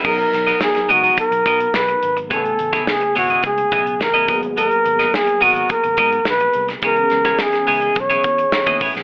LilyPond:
<<
  \new Staff \with { instrumentName = "Flugelhorn" } { \time 4/4 \key b \major \tempo 4 = 106 ais'4 gis'8 fis'8 ais'4 b'8. r16 | a'4 gis'8 fis'8 gis'4 ais'8. r16 | ais'4 gis'8 fis'8 ais'4 b'8. r16 | ais'4 gis'4 cis''4. r8 | }
  \new Staff \with { instrumentName = "Clean electric guitar" } { \time 4/4 \key b \major <b fis' ais' dis''>8 r16 <b fis' ais' dis''>16 r8 <b fis' ais' dis''>16 <b fis' ais' dis''>16 r8 <b fis' ais' dis''>8 r4 | <b e' gis' cis''>8 r16 <b e' gis' cis''>16 r8 <b e' gis' cis''>16 <b e' gis' dis''>16 r8 <b e' gis' dis''>8 r16 <b e' gis' dis''>16 <b fis' ais' dis''>16 r16 | <b fis' ais' dis''>8 r16 <b fis' ais' dis''>16 r8 <b fis' ais' dis''>16 <b fis' ais' dis''>16 r8 <b fis' ais' dis''>8 r4 | <b e' gis' cis''>8 r16 <b e' gis' cis''>16 r8 <b e' gis' cis''>16 <b e' gis' dis''>16 r16 <b e' gis' cis''>8 r8 <b e' gis' dis''>16 <b e' gis' cis''>16 r16 | }
  \new Staff \with { instrumentName = "Tine electric piano" } { \time 4/4 \key b \major <fis b dis' gis' ais''>1 | <cis a b gis''>2.~ <cis a b gis''>8 <fis ais b gis'>8~ | <fis ais b gis'>2.~ <fis ais b gis'>8 r8 | <e b cis' gis'>1 | }
  \new Staff \with { instrumentName = "Fingered electric bass" } { \clef bass \time 4/4 \key b \major b,,8 b,,8 r8 cis,8 r16 b,,16 b,8 b,,8 gis,,8 | a,,8 a,,8 r8 gis,,8 cis,8 b,,8 a,,8 gis,,8~ | gis,,8 gis,,8 r8 gis,,8 r16 gis,,16 gis,8 ais,,8 c,8 | cis,8 cis,8 r8 cis,8 b,,8 e,8 r16 dis,16 a,,16 ais,,16 | }
  \new DrumStaff \with { instrumentName = "Drums" } \drummode { \time 4/4 <cymc bd>16 hh16 <hh sn>16 <hh sn>16 sn16 <hh sn>16 hh16 hh16 <hh bd>16 hh16 <hh bd>16 hh16 sn16 hh16 hh16 hh16 | <hh bd>16 hh16 hh16 <hh bd sn>16 sn16 hh16 hho16 hh16 <hh bd>16 hh16 <hh bd>16 hh16 sn16 hh16 <hh bd>16 hh16 | hh16 hh16 hh16 <hh sn>16 sn16 hh16 hho16 hh16 <hh bd>16 hh16 <hh bd>16 hh16 sn16 hh16 hh16 <hh sn>16 | <hh bd>16 hh16 <hh sn>16 <hh bd sn>16 sn16 <hh sn>16 hho16 hh16 <hh bd>16 hh16 <hh bd>16 hh16 sn16 <hh bd>16 <hho bd>16 <hh sn>16 | }
>>